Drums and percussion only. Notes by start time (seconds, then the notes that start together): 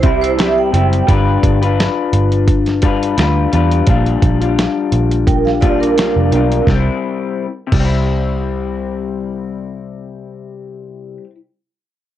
0.03 kick, closed hi-hat
0.24 closed hi-hat
0.39 snare, closed hi-hat
0.74 closed hi-hat
0.93 closed hi-hat
1.08 kick, closed hi-hat
1.43 kick, closed hi-hat
1.63 closed hi-hat
1.80 snare, closed hi-hat
2.13 closed hi-hat
2.32 closed hi-hat
2.47 kick, closed hi-hat
2.66 snare, closed hi-hat
2.82 kick, closed hi-hat
3.03 closed hi-hat
3.18 snare, closed hi-hat
3.53 closed hi-hat
3.72 closed hi-hat
3.87 kick, closed hi-hat
4.06 closed hi-hat
4.22 kick, closed hi-hat
4.42 closed hi-hat
4.59 snare, closed hi-hat
4.92 closed hi-hat
5.11 closed hi-hat
5.27 kick, closed hi-hat
5.47 snare
5.62 kick, closed hi-hat
5.83 closed hi-hat
5.98 snare, closed hi-hat
6.32 closed hi-hat
6.52 closed hi-hat
6.67 kick, snare
7.72 kick, crash